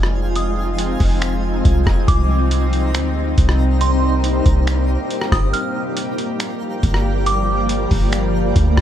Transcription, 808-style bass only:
Already playing: F1
1.00 F1
1.65 C2
1.87 F1
2.08 C2
2.94 D2
3.38 C2
4.46 C2
5.32 G1
6.83 G1
7.91 G1
8.56 D2
8.77 G1

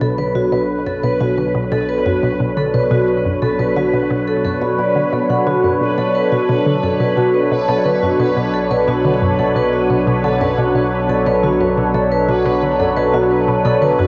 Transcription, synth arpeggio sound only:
0.01 B2
0.18 D3
0.35 B2
0.52 B2
0.86 F#2
1.04 B2
1.21 B2
1.38 D3
1.55 B2
1.72 B2
2.06 F#2
2.23 B2
2.40 B2
2.57 D3
2.74 B2
2.91 B2
3.25 F#2
3.42 B2
3.59 B2
3.76 D3
3.93 B2
4.10 B2
4.45 F#2
4.62 B2
4.79 B2
4.96 D3
5.13 B2
5.30 B2
5.47 D3
5.64 F#2
5.81 B2
5.98 B2
6.32 B2
6.49 B2
6.66 D3
6.83 F#2
7.00 B2
7.17 B2
7.52 B2
7.69 B2
7.86 D3
8.03 F#2
8.19 B2
8.37 B2
8.71 B2
8.88 B2
9.05 D3
9.22 F#2
9.39 B2
9.56 B2
9.90 B2
10.07 B2
10.24 D3
10.41 F#2
10.58 B2
10.75 B2
11.09 B2
11.26 B2
11.43 D3
11.60 F#2
11.77 B2
11.94 B2
12.29 B2
12.46 B2
12.63 D3
12.80 F#2
12.97 B2
13.14 B2
13.48 B2
13.65 B2
13.82 D3
13.99 F#2

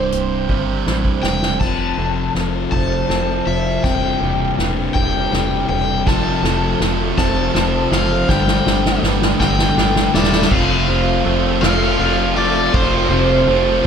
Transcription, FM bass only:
Already playing: C1
0.13 C1
0.49 G1
0.87 A1
1.24 E1
1.61 F1
1.98 F1
2.35 F1
2.73 F1
3.09 F1
3.47 F1
3.84 E1
4.21 E1
4.58 E1
4.96 E1
5.33 E1
5.69 E1
6.07 F1
6.43 F1
6.80 F1
7.18 F1
7.55 F1
7.92 F#1
8.29 G1
8.67 G1
9.03 G1
9.41 G1
9.77 G1
10.15 E1
10.51 F1
10.88 F1
11.25 F1
11.62 F1
11.99 F1
12.74 F1
13.10 F1
13.47 F1

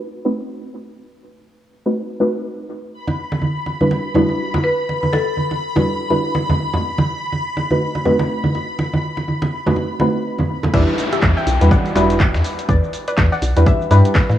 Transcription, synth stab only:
Already playing: A3 C4 D#4 F#4 B4
0.25 A3 C4 D#4 F#4 B4
1.86 A3 C4 D#4 F#4 B4
2.20 A3 C4 D#4 F#4 B4
3.81 G3 D4 E4 F#4 B4
4.15 G3 D4 E4 F#4 B4
5.76 G3 D4 E4 F#4 B4
6.10 G3 D4 E4 F#4 B4
7.71 A3 C4 D#4 F#4 B4
8.05 A3 C4 D#4 F#4 B4
9.66 A3 C4 D#4 F#4 B4
10.00 A3 C4 D#4 F#4 B4
10.74 G3 D4 E4 G4 B4
11.61 G3 D4 E4 F#4 B4
11.96 G3 D4 E4 F#4 B4
13.56 G3 D4 E4 F#4 B4
13.91 G3 D4 E4 G4 B4

